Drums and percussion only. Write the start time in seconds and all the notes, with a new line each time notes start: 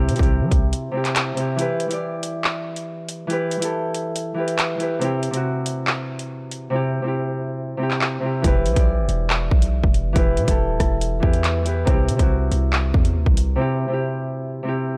0.09 closed hi-hat
0.16 kick, closed hi-hat
0.23 closed hi-hat
0.51 kick, closed hi-hat
0.73 closed hi-hat
1.05 clap, closed hi-hat
1.16 clap, closed hi-hat
1.37 closed hi-hat
1.59 closed hi-hat
1.80 closed hi-hat
1.91 closed hi-hat
2.23 closed hi-hat
2.44 clap
2.76 closed hi-hat
3.09 closed hi-hat
3.30 closed hi-hat
3.51 closed hi-hat
3.62 closed hi-hat
3.94 closed hi-hat
4.16 closed hi-hat
4.48 closed hi-hat
4.59 clap, closed hi-hat
4.80 closed hi-hat
5.02 closed hi-hat
5.23 closed hi-hat
5.34 closed hi-hat
5.66 closed hi-hat
5.87 clap
6.19 closed hi-hat
6.51 closed hi-hat
7.91 clap
8.01 clap
8.44 kick, closed hi-hat
8.66 closed hi-hat
8.76 kick, closed hi-hat
9.09 closed hi-hat
9.30 clap
9.51 kick
9.62 closed hi-hat
9.84 kick
9.94 closed hi-hat
10.16 kick, closed hi-hat
10.37 closed hi-hat
10.48 kick, closed hi-hat
10.80 kick, cross-stick, closed hi-hat
11.01 closed hi-hat
11.23 kick
11.33 closed hi-hat
11.44 clap, closed hi-hat
11.66 closed hi-hat
11.87 kick, closed hi-hat
12.09 closed hi-hat
12.19 kick, closed hi-hat
12.52 closed hi-hat
12.73 clap
12.94 kick
13.05 closed hi-hat
13.26 kick
13.37 closed hi-hat